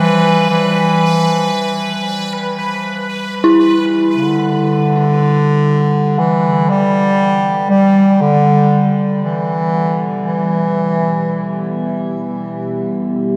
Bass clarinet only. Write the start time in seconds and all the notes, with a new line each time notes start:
0.00 E3
0.51 E3
4.17 D3
6.19 E3
6.70 G3
7.70 G3
8.21 D3
9.23 E3
10.24 E3